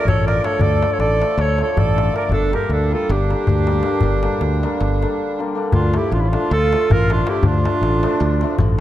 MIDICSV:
0, 0, Header, 1, 6, 480
1, 0, Start_track
1, 0, Tempo, 379267
1, 757, Time_signature, 9, 3, 24, 8
1, 11141, End_track
2, 0, Start_track
2, 0, Title_t, "Clarinet"
2, 0, Program_c, 0, 71
2, 91, Note_on_c, 0, 73, 96
2, 318, Note_off_c, 0, 73, 0
2, 342, Note_on_c, 0, 74, 97
2, 571, Note_on_c, 0, 73, 98
2, 590, Note_off_c, 0, 74, 0
2, 773, Note_on_c, 0, 74, 110
2, 792, Note_off_c, 0, 73, 0
2, 1178, Note_on_c, 0, 73, 89
2, 1197, Note_off_c, 0, 74, 0
2, 1258, Note_off_c, 0, 73, 0
2, 1266, Note_on_c, 0, 74, 99
2, 1782, Note_on_c, 0, 73, 104
2, 1801, Note_off_c, 0, 74, 0
2, 2045, Note_off_c, 0, 73, 0
2, 2065, Note_on_c, 0, 73, 86
2, 2256, Note_on_c, 0, 74, 101
2, 2275, Note_off_c, 0, 73, 0
2, 2719, Note_off_c, 0, 74, 0
2, 2747, Note_on_c, 0, 74, 89
2, 2932, Note_off_c, 0, 74, 0
2, 2949, Note_on_c, 0, 69, 98
2, 3197, Note_off_c, 0, 69, 0
2, 3227, Note_on_c, 0, 70, 90
2, 3448, Note_on_c, 0, 69, 95
2, 3467, Note_off_c, 0, 70, 0
2, 3713, Note_off_c, 0, 69, 0
2, 3720, Note_on_c, 0, 69, 90
2, 3943, Note_on_c, 0, 67, 99
2, 3962, Note_off_c, 0, 69, 0
2, 6838, Note_off_c, 0, 67, 0
2, 7275, Note_on_c, 0, 65, 97
2, 7565, Note_on_c, 0, 67, 92
2, 7584, Note_off_c, 0, 65, 0
2, 7760, Note_off_c, 0, 67, 0
2, 7768, Note_on_c, 0, 65, 86
2, 7852, Note_on_c, 0, 64, 70
2, 7871, Note_off_c, 0, 65, 0
2, 7955, Note_on_c, 0, 65, 92
2, 7974, Note_off_c, 0, 64, 0
2, 8243, Note_off_c, 0, 65, 0
2, 8258, Note_on_c, 0, 69, 109
2, 8757, Note_on_c, 0, 70, 114
2, 8776, Note_off_c, 0, 69, 0
2, 9015, Note_on_c, 0, 65, 100
2, 9034, Note_off_c, 0, 70, 0
2, 9236, Note_on_c, 0, 67, 102
2, 9255, Note_off_c, 0, 65, 0
2, 9424, Note_off_c, 0, 67, 0
2, 9459, Note_on_c, 0, 65, 97
2, 10851, Note_off_c, 0, 65, 0
2, 11141, End_track
3, 0, Start_track
3, 0, Title_t, "Accordion"
3, 0, Program_c, 1, 21
3, 99, Note_on_c, 1, 69, 92
3, 322, Note_off_c, 1, 69, 0
3, 340, Note_on_c, 1, 70, 78
3, 533, Note_off_c, 1, 70, 0
3, 550, Note_on_c, 1, 69, 73
3, 760, Note_off_c, 1, 69, 0
3, 780, Note_on_c, 1, 69, 82
3, 1147, Note_off_c, 1, 69, 0
3, 1166, Note_on_c, 1, 69, 72
3, 1247, Note_off_c, 1, 69, 0
3, 1266, Note_on_c, 1, 69, 82
3, 1725, Note_off_c, 1, 69, 0
3, 1761, Note_on_c, 1, 69, 74
3, 2016, Note_off_c, 1, 69, 0
3, 2035, Note_on_c, 1, 69, 79
3, 2226, Note_off_c, 1, 69, 0
3, 2245, Note_on_c, 1, 69, 93
3, 2710, Note_on_c, 1, 70, 82
3, 2714, Note_off_c, 1, 69, 0
3, 2913, Note_off_c, 1, 70, 0
3, 2913, Note_on_c, 1, 62, 76
3, 3178, Note_off_c, 1, 62, 0
3, 3198, Note_on_c, 1, 67, 74
3, 3408, Note_off_c, 1, 67, 0
3, 3430, Note_on_c, 1, 62, 69
3, 3690, Note_on_c, 1, 65, 70
3, 3705, Note_off_c, 1, 62, 0
3, 3902, Note_off_c, 1, 65, 0
3, 3922, Note_on_c, 1, 62, 65
3, 6828, Note_off_c, 1, 62, 0
3, 7259, Note_on_c, 1, 62, 77
3, 7510, Note_off_c, 1, 62, 0
3, 7537, Note_on_c, 1, 64, 73
3, 7751, Note_off_c, 1, 64, 0
3, 7776, Note_on_c, 1, 62, 71
3, 7854, Note_off_c, 1, 62, 0
3, 7864, Note_on_c, 1, 61, 55
3, 7954, Note_off_c, 1, 61, 0
3, 7971, Note_on_c, 1, 62, 73
3, 8251, Note_off_c, 1, 62, 0
3, 8282, Note_on_c, 1, 65, 83
3, 8719, Note_off_c, 1, 65, 0
3, 8778, Note_on_c, 1, 65, 101
3, 9002, Note_off_c, 1, 65, 0
3, 9006, Note_on_c, 1, 62, 81
3, 9203, Note_off_c, 1, 62, 0
3, 9207, Note_on_c, 1, 64, 73
3, 9409, Note_off_c, 1, 64, 0
3, 9420, Note_on_c, 1, 62, 71
3, 10832, Note_off_c, 1, 62, 0
3, 11141, End_track
4, 0, Start_track
4, 0, Title_t, "Hammered dulcimer"
4, 0, Program_c, 2, 15
4, 0, Note_on_c, 2, 50, 50
4, 0, Note_on_c, 2, 53, 50
4, 315, Note_off_c, 2, 50, 0
4, 319, Note_off_c, 2, 53, 0
4, 330, Note_on_c, 2, 50, 58
4, 334, Note_on_c, 2, 53, 56
4, 344, Note_on_c, 2, 57, 48
4, 353, Note_on_c, 2, 62, 66
4, 482, Note_off_c, 2, 57, 0
4, 486, Note_off_c, 2, 62, 0
4, 536, Note_off_c, 2, 50, 0
4, 540, Note_off_c, 2, 53, 0
4, 551, Note_on_c, 2, 50, 63
4, 556, Note_on_c, 2, 53, 57
4, 562, Note_on_c, 2, 57, 54
4, 567, Note_on_c, 2, 62, 65
4, 699, Note_off_c, 2, 57, 0
4, 701, Note_off_c, 2, 62, 0
4, 1018, Note_off_c, 2, 50, 0
4, 1026, Note_off_c, 2, 53, 0
4, 1033, Note_on_c, 2, 50, 59
4, 1041, Note_on_c, 2, 53, 59
4, 1052, Note_on_c, 2, 57, 48
4, 1060, Note_on_c, 2, 62, 69
4, 1194, Note_off_c, 2, 57, 0
4, 1198, Note_off_c, 2, 62, 0
4, 1503, Note_off_c, 2, 50, 0
4, 1505, Note_off_c, 2, 53, 0
4, 1517, Note_on_c, 2, 50, 71
4, 1521, Note_on_c, 2, 53, 58
4, 1530, Note_on_c, 2, 57, 64
4, 1534, Note_on_c, 2, 62, 65
4, 1683, Note_off_c, 2, 57, 0
4, 1685, Note_off_c, 2, 62, 0
4, 1994, Note_off_c, 2, 50, 0
4, 2007, Note_off_c, 2, 53, 0
4, 2009, Note_on_c, 2, 50, 65
4, 2022, Note_on_c, 2, 53, 59
4, 2033, Note_on_c, 2, 57, 58
4, 2038, Note_on_c, 2, 62, 72
4, 2183, Note_off_c, 2, 57, 0
4, 2186, Note_off_c, 2, 62, 0
4, 2461, Note_off_c, 2, 50, 0
4, 2467, Note_off_c, 2, 53, 0
4, 2476, Note_on_c, 2, 50, 59
4, 2482, Note_on_c, 2, 53, 53
4, 2490, Note_on_c, 2, 62, 67
4, 2491, Note_on_c, 2, 57, 58
4, 2643, Note_off_c, 2, 62, 0
4, 2644, Note_off_c, 2, 57, 0
4, 2667, Note_off_c, 2, 50, 0
4, 2672, Note_off_c, 2, 53, 0
4, 2682, Note_on_c, 2, 50, 68
4, 2688, Note_on_c, 2, 53, 51
4, 2694, Note_on_c, 2, 57, 54
4, 2703, Note_on_c, 2, 62, 66
4, 2852, Note_off_c, 2, 57, 0
4, 2856, Note_off_c, 2, 62, 0
4, 2995, Note_off_c, 2, 50, 0
4, 2995, Note_off_c, 2, 53, 0
4, 3177, Note_on_c, 2, 50, 61
4, 3180, Note_on_c, 2, 55, 51
4, 3197, Note_on_c, 2, 58, 60
4, 3200, Note_on_c, 2, 62, 76
4, 3353, Note_off_c, 2, 58, 0
4, 3355, Note_off_c, 2, 62, 0
4, 3662, Note_off_c, 2, 50, 0
4, 3667, Note_off_c, 2, 55, 0
4, 3677, Note_on_c, 2, 50, 61
4, 3683, Note_on_c, 2, 55, 57
4, 3695, Note_on_c, 2, 58, 54
4, 3699, Note_on_c, 2, 62, 67
4, 3851, Note_off_c, 2, 58, 0
4, 3852, Note_off_c, 2, 62, 0
4, 4156, Note_off_c, 2, 50, 0
4, 4167, Note_off_c, 2, 55, 0
4, 4171, Note_on_c, 2, 50, 53
4, 4181, Note_on_c, 2, 55, 54
4, 4181, Note_on_c, 2, 58, 51
4, 4191, Note_on_c, 2, 62, 69
4, 4341, Note_off_c, 2, 58, 0
4, 4346, Note_off_c, 2, 62, 0
4, 4634, Note_off_c, 2, 50, 0
4, 4642, Note_off_c, 2, 55, 0
4, 4650, Note_on_c, 2, 50, 67
4, 4657, Note_on_c, 2, 55, 69
4, 4665, Note_on_c, 2, 58, 66
4, 4671, Note_on_c, 2, 62, 77
4, 4814, Note_off_c, 2, 58, 0
4, 4817, Note_off_c, 2, 62, 0
4, 4849, Note_off_c, 2, 50, 0
4, 4857, Note_off_c, 2, 55, 0
4, 4864, Note_on_c, 2, 50, 65
4, 4873, Note_on_c, 2, 55, 65
4, 4885, Note_on_c, 2, 58, 62
4, 4891, Note_on_c, 2, 62, 81
4, 5030, Note_off_c, 2, 58, 0
4, 5033, Note_off_c, 2, 62, 0
4, 5334, Note_off_c, 2, 50, 0
4, 5338, Note_off_c, 2, 55, 0
4, 5348, Note_on_c, 2, 50, 74
4, 5354, Note_on_c, 2, 55, 69
4, 5367, Note_on_c, 2, 58, 62
4, 5373, Note_on_c, 2, 62, 74
4, 5520, Note_off_c, 2, 58, 0
4, 5523, Note_off_c, 2, 62, 0
4, 5848, Note_off_c, 2, 50, 0
4, 5851, Note_off_c, 2, 55, 0
4, 5863, Note_on_c, 2, 50, 75
4, 5867, Note_on_c, 2, 55, 76
4, 5873, Note_on_c, 2, 58, 77
4, 5878, Note_on_c, 2, 62, 88
4, 6020, Note_off_c, 2, 58, 0
4, 6023, Note_off_c, 2, 62, 0
4, 6326, Note_off_c, 2, 50, 0
4, 6341, Note_on_c, 2, 50, 72
4, 6342, Note_off_c, 2, 55, 0
4, 6357, Note_on_c, 2, 55, 70
4, 6365, Note_on_c, 2, 58, 63
4, 6377, Note_on_c, 2, 62, 79
4, 6513, Note_off_c, 2, 58, 0
4, 6519, Note_off_c, 2, 62, 0
4, 6803, Note_off_c, 2, 50, 0
4, 6813, Note_off_c, 2, 55, 0
4, 6818, Note_on_c, 2, 50, 67
4, 6828, Note_on_c, 2, 55, 67
4, 6831, Note_on_c, 2, 58, 66
4, 6836, Note_on_c, 2, 62, 83
4, 6975, Note_off_c, 2, 58, 0
4, 6977, Note_off_c, 2, 62, 0
4, 7008, Note_off_c, 2, 50, 0
4, 7013, Note_off_c, 2, 55, 0
4, 7023, Note_on_c, 2, 50, 66
4, 7028, Note_on_c, 2, 55, 64
4, 7040, Note_on_c, 2, 58, 65
4, 7053, Note_on_c, 2, 62, 83
4, 7186, Note_off_c, 2, 58, 0
4, 7192, Note_off_c, 2, 62, 0
4, 7317, Note_off_c, 2, 50, 0
4, 7317, Note_off_c, 2, 55, 0
4, 7516, Note_on_c, 2, 50, 58
4, 7521, Note_on_c, 2, 53, 58
4, 7527, Note_on_c, 2, 57, 59
4, 7543, Note_on_c, 2, 62, 65
4, 7677, Note_off_c, 2, 57, 0
4, 7685, Note_off_c, 2, 62, 0
4, 7988, Note_off_c, 2, 50, 0
4, 7998, Note_off_c, 2, 53, 0
4, 8004, Note_on_c, 2, 50, 62
4, 8013, Note_on_c, 2, 53, 53
4, 8015, Note_on_c, 2, 57, 57
4, 8026, Note_on_c, 2, 62, 74
4, 8167, Note_off_c, 2, 57, 0
4, 8172, Note_off_c, 2, 62, 0
4, 8498, Note_off_c, 2, 50, 0
4, 8500, Note_off_c, 2, 53, 0
4, 8513, Note_on_c, 2, 50, 65
4, 8516, Note_on_c, 2, 53, 54
4, 8532, Note_on_c, 2, 57, 64
4, 8541, Note_on_c, 2, 62, 67
4, 8671, Note_off_c, 2, 57, 0
4, 8675, Note_off_c, 2, 62, 0
4, 8961, Note_off_c, 2, 50, 0
4, 8971, Note_off_c, 2, 53, 0
4, 8976, Note_on_c, 2, 50, 54
4, 8986, Note_on_c, 2, 53, 61
4, 8995, Note_on_c, 2, 57, 57
4, 8996, Note_on_c, 2, 62, 62
4, 9131, Note_off_c, 2, 57, 0
4, 9131, Note_off_c, 2, 62, 0
4, 9168, Note_off_c, 2, 50, 0
4, 9176, Note_off_c, 2, 53, 0
4, 9183, Note_on_c, 2, 50, 70
4, 9192, Note_on_c, 2, 53, 60
4, 9201, Note_on_c, 2, 57, 62
4, 9211, Note_on_c, 2, 62, 72
4, 9339, Note_off_c, 2, 57, 0
4, 9344, Note_off_c, 2, 62, 0
4, 9662, Note_off_c, 2, 50, 0
4, 9673, Note_off_c, 2, 53, 0
4, 9677, Note_on_c, 2, 50, 68
4, 9688, Note_on_c, 2, 53, 59
4, 9692, Note_on_c, 2, 57, 59
4, 9703, Note_on_c, 2, 62, 73
4, 9831, Note_off_c, 2, 57, 0
4, 9837, Note_off_c, 2, 62, 0
4, 10149, Note_off_c, 2, 53, 0
4, 10150, Note_off_c, 2, 50, 0
4, 10165, Note_on_c, 2, 50, 82
4, 10165, Note_on_c, 2, 53, 79
4, 10182, Note_on_c, 2, 57, 75
4, 10187, Note_on_c, 2, 62, 100
4, 10322, Note_off_c, 2, 57, 0
4, 10325, Note_off_c, 2, 62, 0
4, 10645, Note_off_c, 2, 50, 0
4, 10646, Note_off_c, 2, 53, 0
4, 10660, Note_on_c, 2, 50, 81
4, 10661, Note_on_c, 2, 53, 63
4, 10667, Note_on_c, 2, 57, 68
4, 10680, Note_on_c, 2, 62, 90
4, 10810, Note_off_c, 2, 57, 0
4, 10816, Note_off_c, 2, 62, 0
4, 11106, Note_off_c, 2, 50, 0
4, 11113, Note_off_c, 2, 53, 0
4, 11141, End_track
5, 0, Start_track
5, 0, Title_t, "Fingered electric bass"
5, 0, Program_c, 3, 33
5, 64, Note_on_c, 3, 33, 78
5, 476, Note_off_c, 3, 33, 0
5, 751, Note_on_c, 3, 38, 84
5, 1052, Note_off_c, 3, 38, 0
5, 1251, Note_on_c, 3, 33, 71
5, 1551, Note_off_c, 3, 33, 0
5, 1740, Note_on_c, 3, 38, 99
5, 2043, Note_off_c, 3, 38, 0
5, 2236, Note_on_c, 3, 33, 89
5, 2648, Note_off_c, 3, 33, 0
5, 2899, Note_on_c, 3, 31, 78
5, 3207, Note_off_c, 3, 31, 0
5, 3409, Note_on_c, 3, 38, 81
5, 3713, Note_off_c, 3, 38, 0
5, 3915, Note_on_c, 3, 31, 113
5, 4216, Note_off_c, 3, 31, 0
5, 4415, Note_on_c, 3, 38, 81
5, 4823, Note_off_c, 3, 38, 0
5, 5100, Note_on_c, 3, 31, 90
5, 5396, Note_off_c, 3, 31, 0
5, 5580, Note_on_c, 3, 38, 74
5, 5880, Note_off_c, 3, 38, 0
5, 6084, Note_on_c, 3, 31, 92
5, 6381, Note_off_c, 3, 31, 0
5, 7254, Note_on_c, 3, 38, 83
5, 7550, Note_off_c, 3, 38, 0
5, 7740, Note_on_c, 3, 33, 79
5, 8037, Note_off_c, 3, 33, 0
5, 8241, Note_on_c, 3, 38, 104
5, 8535, Note_off_c, 3, 38, 0
5, 8732, Note_on_c, 3, 33, 88
5, 9134, Note_off_c, 3, 33, 0
5, 9397, Note_on_c, 3, 38, 85
5, 9693, Note_off_c, 3, 38, 0
5, 9890, Note_on_c, 3, 33, 70
5, 10185, Note_off_c, 3, 33, 0
5, 10385, Note_on_c, 3, 38, 100
5, 10679, Note_off_c, 3, 38, 0
5, 10883, Note_on_c, 3, 33, 97
5, 11141, Note_off_c, 3, 33, 0
5, 11141, End_track
6, 0, Start_track
6, 0, Title_t, "Darbuka"
6, 102, Note_on_c, 9, 64, 103
6, 228, Note_on_c, 9, 63, 30
6, 229, Note_off_c, 9, 64, 0
6, 355, Note_off_c, 9, 63, 0
6, 355, Note_on_c, 9, 63, 77
6, 463, Note_off_c, 9, 63, 0
6, 463, Note_on_c, 9, 63, 29
6, 561, Note_off_c, 9, 63, 0
6, 561, Note_on_c, 9, 63, 83
6, 688, Note_off_c, 9, 63, 0
6, 770, Note_on_c, 9, 64, 97
6, 897, Note_off_c, 9, 64, 0
6, 916, Note_on_c, 9, 63, 32
6, 1042, Note_off_c, 9, 63, 0
6, 1043, Note_on_c, 9, 63, 81
6, 1170, Note_off_c, 9, 63, 0
6, 1262, Note_on_c, 9, 63, 70
6, 1389, Note_off_c, 9, 63, 0
6, 1396, Note_on_c, 9, 63, 26
6, 1522, Note_off_c, 9, 63, 0
6, 1539, Note_on_c, 9, 63, 73
6, 1666, Note_off_c, 9, 63, 0
6, 1752, Note_on_c, 9, 63, 75
6, 1879, Note_off_c, 9, 63, 0
6, 1887, Note_on_c, 9, 63, 28
6, 2002, Note_off_c, 9, 63, 0
6, 2002, Note_on_c, 9, 63, 61
6, 2129, Note_off_c, 9, 63, 0
6, 2131, Note_on_c, 9, 63, 28
6, 2243, Note_on_c, 9, 64, 95
6, 2258, Note_off_c, 9, 63, 0
6, 2369, Note_off_c, 9, 64, 0
6, 2381, Note_on_c, 9, 63, 24
6, 2506, Note_off_c, 9, 63, 0
6, 2506, Note_on_c, 9, 63, 77
6, 2618, Note_off_c, 9, 63, 0
6, 2618, Note_on_c, 9, 63, 29
6, 2730, Note_off_c, 9, 63, 0
6, 2730, Note_on_c, 9, 63, 64
6, 2856, Note_off_c, 9, 63, 0
6, 2934, Note_on_c, 9, 64, 84
6, 3061, Note_off_c, 9, 64, 0
6, 3075, Note_on_c, 9, 63, 27
6, 3202, Note_off_c, 9, 63, 0
6, 3205, Note_on_c, 9, 63, 66
6, 3332, Note_off_c, 9, 63, 0
6, 3419, Note_on_c, 9, 63, 59
6, 3545, Note_off_c, 9, 63, 0
6, 3566, Note_on_c, 9, 63, 24
6, 3693, Note_off_c, 9, 63, 0
6, 3926, Note_on_c, 9, 63, 72
6, 4052, Note_off_c, 9, 63, 0
6, 4062, Note_on_c, 9, 63, 26
6, 4183, Note_off_c, 9, 63, 0
6, 4183, Note_on_c, 9, 63, 58
6, 4290, Note_off_c, 9, 63, 0
6, 4290, Note_on_c, 9, 63, 28
6, 4394, Note_on_c, 9, 64, 85
6, 4416, Note_off_c, 9, 63, 0
6, 4520, Note_off_c, 9, 64, 0
6, 4533, Note_on_c, 9, 63, 25
6, 4644, Note_off_c, 9, 63, 0
6, 4644, Note_on_c, 9, 63, 72
6, 4748, Note_off_c, 9, 63, 0
6, 4748, Note_on_c, 9, 63, 27
6, 4846, Note_off_c, 9, 63, 0
6, 4846, Note_on_c, 9, 63, 71
6, 4972, Note_off_c, 9, 63, 0
6, 5069, Note_on_c, 9, 64, 90
6, 5195, Note_off_c, 9, 64, 0
6, 5217, Note_on_c, 9, 63, 28
6, 5343, Note_off_c, 9, 63, 0
6, 5351, Note_on_c, 9, 63, 73
6, 5477, Note_off_c, 9, 63, 0
6, 5477, Note_on_c, 9, 63, 30
6, 5582, Note_off_c, 9, 63, 0
6, 5582, Note_on_c, 9, 63, 71
6, 5708, Note_off_c, 9, 63, 0
6, 5722, Note_on_c, 9, 63, 22
6, 5848, Note_off_c, 9, 63, 0
6, 5863, Note_on_c, 9, 63, 62
6, 5968, Note_off_c, 9, 63, 0
6, 5968, Note_on_c, 9, 63, 24
6, 6081, Note_off_c, 9, 63, 0
6, 6081, Note_on_c, 9, 63, 70
6, 6208, Note_off_c, 9, 63, 0
6, 6220, Note_on_c, 9, 63, 26
6, 6347, Note_off_c, 9, 63, 0
6, 6360, Note_on_c, 9, 63, 54
6, 6487, Note_off_c, 9, 63, 0
6, 7244, Note_on_c, 9, 64, 90
6, 7371, Note_off_c, 9, 64, 0
6, 7394, Note_on_c, 9, 63, 28
6, 7513, Note_off_c, 9, 63, 0
6, 7513, Note_on_c, 9, 63, 77
6, 7639, Note_off_c, 9, 63, 0
6, 7750, Note_on_c, 9, 63, 64
6, 7876, Note_off_c, 9, 63, 0
6, 7884, Note_on_c, 9, 63, 26
6, 8010, Note_off_c, 9, 63, 0
6, 8012, Note_on_c, 9, 63, 72
6, 8139, Note_off_c, 9, 63, 0
6, 8245, Note_on_c, 9, 63, 71
6, 8372, Note_off_c, 9, 63, 0
6, 8513, Note_on_c, 9, 63, 68
6, 8628, Note_off_c, 9, 63, 0
6, 8628, Note_on_c, 9, 63, 31
6, 8744, Note_on_c, 9, 64, 112
6, 8755, Note_off_c, 9, 63, 0
6, 8865, Note_on_c, 9, 63, 29
6, 8870, Note_off_c, 9, 64, 0
6, 8987, Note_off_c, 9, 63, 0
6, 8987, Note_on_c, 9, 63, 81
6, 9095, Note_off_c, 9, 63, 0
6, 9095, Note_on_c, 9, 63, 33
6, 9198, Note_off_c, 9, 63, 0
6, 9198, Note_on_c, 9, 63, 85
6, 9324, Note_off_c, 9, 63, 0
6, 9402, Note_on_c, 9, 64, 96
6, 9529, Note_off_c, 9, 64, 0
6, 9552, Note_on_c, 9, 63, 32
6, 9679, Note_off_c, 9, 63, 0
6, 9687, Note_on_c, 9, 63, 82
6, 9813, Note_off_c, 9, 63, 0
6, 9907, Note_on_c, 9, 63, 68
6, 10031, Note_off_c, 9, 63, 0
6, 10031, Note_on_c, 9, 63, 28
6, 10158, Note_off_c, 9, 63, 0
6, 10163, Note_on_c, 9, 63, 77
6, 10290, Note_off_c, 9, 63, 0
6, 10381, Note_on_c, 9, 63, 76
6, 10507, Note_off_c, 9, 63, 0
6, 10515, Note_on_c, 9, 63, 26
6, 10642, Note_off_c, 9, 63, 0
6, 10644, Note_on_c, 9, 63, 56
6, 10767, Note_off_c, 9, 63, 0
6, 10767, Note_on_c, 9, 63, 31
6, 10864, Note_on_c, 9, 64, 101
6, 10894, Note_off_c, 9, 63, 0
6, 10991, Note_off_c, 9, 64, 0
6, 11003, Note_on_c, 9, 63, 30
6, 11129, Note_off_c, 9, 63, 0
6, 11141, End_track
0, 0, End_of_file